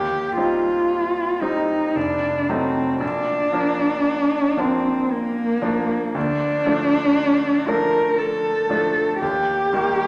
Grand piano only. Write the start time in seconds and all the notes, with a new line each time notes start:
Already playing: D#2
0.37 G3 C4 D#4
1.41 G3 C4 D#4
1.96 F1
2.49 F#3 A3 D#4
3.00 A#1
3.52 F3 A#3 D4
4.57 F3 A#3 D4
5.62 F3 A#3 D4
6.15 D2
6.66 F3 A3 D4
7.68 F3 A3 D4
8.69 F3 A3 D4
9.22 D#2
9.73 D#3 G3 A#3